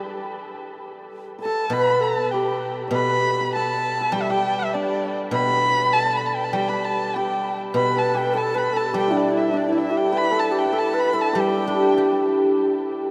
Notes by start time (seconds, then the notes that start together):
Already playing: G3 G4 A4 B4
1.38 A4 B4
1.44 A4 A5
1.70 B2 B4 B5
2.01 A4 A5
2.31 G4 G5
2.88 B2 D5
2.94 B4 B5
3.41 B4
3.55 A4 A5
4.01 A4
4.12 G3 G4 G5
4.22 E5
4.30 G4 G5
4.59 E5
4.74 D4 D5
5.31 B2 B4 B5
5.41 B4
5.49 B4
5.55 B4
5.64 B4
5.70 B4
5.78 B4
5.93 A4 A5
6.17 B5
6.26 A5
6.36 G5
6.44 A5
6.53 G3 G4 G5
6.68 B4 B5
6.85 A5
7.14 G4 G5
7.74 B2 B4 B5
7.97 A4 A5
8.14 G4 G5
8.34 A4 A5
8.55 B4 B5
8.73 A4 A5
8.91 G3 G4
8.97 G5
9.08 D4 E4
9.17 D5
9.31 E4
9.37 E5
9.50 D4
9.58 D5
9.69 E4
9.78 E5
9.91 G4
9.97 G5
10.13 B4
10.18 B5
10.31 A4
10.40 A5
10.52 G4
10.59 G5
10.66 B4
10.73 A4
10.79 A5
10.94 B4
10.99 B5
11.13 A4
11.21 A5
11.33 G3 G4
11.40 G4 G5
11.49 G4
11.58 G4
11.66 D4 G4
11.74 G4
11.81 G4
11.89 G4
11.96 G4
12.05 G4
12.12 G4